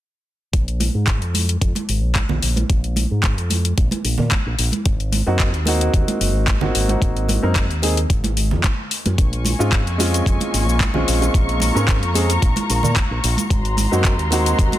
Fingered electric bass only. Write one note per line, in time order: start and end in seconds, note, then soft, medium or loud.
0.53 0.88 A#1 medium
0.94 1.22 G#2 medium
1.22 1.56 F2 medium
1.61 1.72 F2 medium
1.89 2.03 G#1 medium
2.03 2.22 A#1 medium
2.30 2.39 A#1 medium
2.43 2.62 A#1 medium
2.70 3.04 A#1 medium
3.11 3.38 G#2 medium
3.38 3.72 F2 medium
3.78 3.88 A#1 medium
4.04 4.15 A#1 medium
4.19 4.28 A#2 medium
4.46 4.55 A#1 medium
4.59 4.69 A#1 medium
4.86 5.21 G#1 medium
5.27 5.54 F#2 medium
5.54 5.88 D#2 medium
5.94 6.04 D#2 medium
6.20 6.35 F#1 medium
6.35 6.54 G#1 medium
6.62 6.71 G#1 medium
6.75 6.95 G#1 medium
7.02 7.37 G#1 medium
7.43 7.70 F#2 medium
7.70 8.04 D#2 medium
8.10 8.53 G#1 medium
8.52 8.61 F2 medium
9.06 9.15 F#2 medium
9.18 9.53 A#1 loud
9.60 9.87 G#2 medium
9.87 10.21 F2 medium
10.26 10.36 F2 medium
10.54 10.68 G#1 medium
10.68 10.87 A#1 medium
10.95 11.04 A#1 medium
11.08 11.27 A#1 medium
11.34 11.69 A#1 loud
11.75 12.03 G#2 medium
12.03 12.37 F2 medium
12.42 12.53 A#1 loud
12.70 12.80 A#1 medium
12.84 12.93 A#2 medium
13.11 13.20 A#1 medium
13.24 13.34 A#1 medium
13.50 13.85 G#1 loud
13.92 14.19 F#2 medium
14.19 14.53 D#2 medium
14.59 14.69 D#2 medium